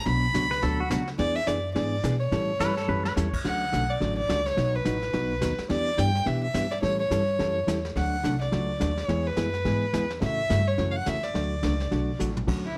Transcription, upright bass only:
0.06 0.34 B1 loud
0.34 0.62 C#2 medium
0.63 0.90 D2 medium
0.91 1.18 C#2 medium
1.19 1.46 E2 medium
1.47 1.75 F#2 medium
1.76 2.03 G#2 medium
2.03 2.31 B2 medium
2.32 2.59 A2 medium
2.60 2.87 G2 medium
2.89 3.16 F#2 medium
3.17 3.44 E2 medium
3.45 3.72 D2 medium
3.74 4.01 B1 medium
4.01 4.28 A1 medium
4.30 4.57 C#2 medium
4.57 4.85 B1 medium
4.86 5.13 A1 medium
5.14 5.41 B1 medium
5.42 5.58 D#2 medium
5.59 muted upright bass stroke soft
5.70 5.97 E2 medium
5.98 6.26 G2 medium
6.27 6.54 B2 medium
6.54 6.82 G2 medium
6.83 7.10 A2 medium
7.11 7.38 G2 medium
7.39 7.67 F#2 medium
7.67 7.95 E2 medium
7.96 8.23 D2 medium
8.24 8.52 C2 medium
8.53 8.80 C#2 medium
8.81 9.08 D#2 loud
9.09 9.36 E2 medium
9.37 9.64 F#2 medium
9.65 9.93 G#2 medium
9.94 10.21 E2 medium
10.22 10.49 A2 medium
10.51 10.78 G2 medium
10.78 11.06 F#2 medium
11.07 11.34 E2 medium
11.35 11.62 D2 medium
11.63 11.91 C#2 medium
11.92 12.19 B1 medium
12.20 12.47 A1 medium
12.48 12.75 D2 medium

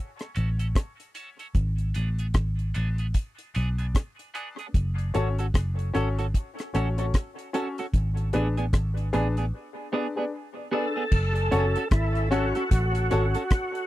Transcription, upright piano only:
0.35 0.55 C#4 medium
0.35 0.56 F#4 medium
0.35 0.56 A4 medium
0.35 0.56 C#5 medium
0.59 0.73 C#4 medium
0.59 0.73 F#4 medium
0.59 0.73 A4 medium
0.59 0.73 C#5 medium
1.15 1.35 C#4 medium
1.15 1.35 F#4 medium
1.15 1.35 A4 medium
1.15 1.36 C#5 medium
1.94 2.15 D4 medium
1.94 2.15 G#4 medium
1.94 2.15 B4 medium
1.94 2.16 D5 medium
2.74 2.95 D4 medium
2.74 2.95 G#4 medium
2.74 2.95 B4 medium
2.74 2.95 D5 loud
3.54 3.74 D4 medium
3.54 3.75 G#4 medium
3.54 3.75 B4 medium
3.54 3.75 D5 medium
3.78 3.92 D4 medium
3.78 3.92 G#4 medium
3.78 3.92 B4 medium
3.78 3.92 D5 medium
4.18 4.25 B4 soft
4.18 4.25 D5 soft
4.34 4.54 D4 medium
4.34 4.55 G#4 medium
4.34 4.55 B4 medium
4.34 4.55 D5 loud
5.14 5.34 C#4 medium
5.14 5.34 F#4 medium
5.14 5.35 A4 medium
5.14 5.35 C#5 medium
5.94 6.14 C#4 medium
5.94 6.14 F#4 medium
5.94 6.14 A4 medium
5.94 6.15 C#5 medium
6.74 6.94 C#4 medium
6.74 6.94 F#4 medium
6.74 6.94 A4 medium
6.74 6.95 C#5 medium
6.97 7.11 C#4 medium
6.97 7.11 F#4 medium
6.97 7.11 A4 medium
6.97 7.12 C#5 medium
7.53 7.74 C#4 medium
7.53 7.74 F#4 medium
7.53 7.74 A4 medium
7.53 7.74 C#5 medium
8.33 8.53 D4 medium
8.33 8.54 G#4 medium
8.33 8.54 B4 medium
8.33 8.54 D5 medium
9.13 9.33 D4 loud
9.13 9.33 G#4 medium
9.13 9.33 B4 medium
9.13 9.34 D5 loud
9.92 10.13 D4 medium
9.92 10.13 G#4 medium
9.92 10.13 B4 medium
9.92 10.13 D5 medium
10.16 10.30 D4 medium
10.16 10.30 G#4 medium
10.16 10.30 B4 medium
10.16 10.30 D5 medium
10.57 10.63 B4 soft
10.57 10.63 D5 soft
10.72 10.92 D4 medium
10.72 10.92 G#4 medium
10.72 10.93 B4 medium
10.72 10.93 D5 medium
11.51 11.72 C#4 medium
11.51 11.72 F#4 medium
11.51 11.72 A4 medium
11.51 11.73 C#5 loud
12.31 12.51 C#4 loud
12.31 12.52 F#4 medium
12.31 12.52 A4 medium
12.31 12.52 C#5 loud
13.11 13.31 C#4 medium
13.11 13.31 F#4 medium
13.11 13.31 A4 medium
13.11 13.32 C#5 medium

